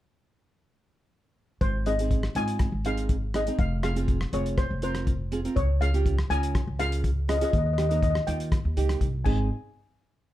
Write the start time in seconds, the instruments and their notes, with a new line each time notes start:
1.61 upright bass G#1, steel pan C5, kick, closed hi-hat
1.86 nylon-string guitar C4 D#4 G#4, steel pan D#5, closed hi-hat
1.99 nylon-string guitar C4 D#4 G#4, closed hi-hat
2.11 kick, closed hi-hat
2.23 cross-stick
2.35 upright bass G#1, nylon-string guitar C4 D#4 F4, steel pan G#5, closed hi-hat
2.48 closed hi-hat
2.59 kick, cross-stick, closed hi-hat
2.72 upright bass G#1
2.85 nylon-string guitar C4 D#4 G#4, steel pan F5, closed hi-hat
2.97 closed hi-hat
3.09 kick, closed hi-hat
3.34 nylon-string guitar C4 D#4 G#4, steel pan D#5, cross-stick, closed hi-hat
3.47 nylon-string guitar C4 D#4 G#4, closed hi-hat
3.59 upright bass F1, steel pan F5, kick, closed hi-hat
3.83 nylon-string guitar C4 F4 G#4, steel pan F5, cross-stick, closed hi-hat
3.96 nylon-string guitar C4 F4 G#4, closed hi-hat
4.08 kick, closed hi-hat
4.21 cross-stick
4.33 upright bass F1, nylon-string guitar C4 F4 G#4, steel pan C#5, closed hi-hat
4.46 closed hi-hat
4.58 steel pan C5, kick, cross-stick, closed hi-hat
4.71 upright bass F1
4.82 nylon-string guitar C4 F4 A#4, steel pan C5, closed hi-hat
4.95 cross-stick, closed hi-hat
5.07 kick, closed hi-hat
5.32 nylon-string guitar C4 F4 G#4, closed hi-hat
5.45 nylon-string guitar C4 F4 A#4, closed hi-hat
5.56 upright bass C#2, steel pan C#5, kick, closed hi-hat
5.81 nylon-string guitar C#4 F4 G#4, steel pan F5, closed hi-hat
5.94 nylon-string guitar C#4 F4 G4, closed hi-hat
6.06 kick, closed hi-hat
6.19 cross-stick
6.30 upright bass C#2, nylon-string guitar C#4 F4 A#4, steel pan G#5, closed hi-hat
6.43 closed hi-hat
6.55 kick, cross-stick, closed hi-hat
6.67 upright bass C#2
6.79 nylon-string guitar C#4 F4 G#4, steel pan F5, closed hi-hat
6.92 closed hi-hat
7.04 kick, closed hi-hat
7.28 nylon-string guitar C#4 F4 G#4, steel pan D#5, cross-stick, closed hi-hat
7.37 nylon-string guitar C#4, steel pan D#5, closed hi-hat
7.41 nylon-string guitar F4 G#4, steel pan D#5
7.51 upright bass D#2, steel pan D#5, kick, closed hi-hat
7.58 steel pan D#5
7.66 steel pan D#5
7.73 steel pan D#5
7.78 nylon-string guitar A#3 D#4 G4, steel pan D#5, cross-stick, closed hi-hat
7.89 nylon-string guitar A#3 D#4 A#4, steel pan D#5, closed hi-hat
7.96 steel pan D#5
8.03 steel pan D#5, kick, closed hi-hat
8.10 steel pan D#5
8.15 cross-stick
8.27 upright bass D#2, nylon-string guitar A#3 D#4 F4, steel pan G5, closed hi-hat
8.40 closed hi-hat
8.52 kick, cross-stick, closed hi-hat
8.65 upright bass D#2
8.76 upright bass C#2, nylon-string guitar A#3 D#4 G4, closed hi-hat
8.89 cross-stick, closed hi-hat
9.01 upright bass C2, kick, closed hi-hat
9.24 upright bass G#1, nylon-string guitar C4 D#4 G#4, steel pan G#5, kick, crash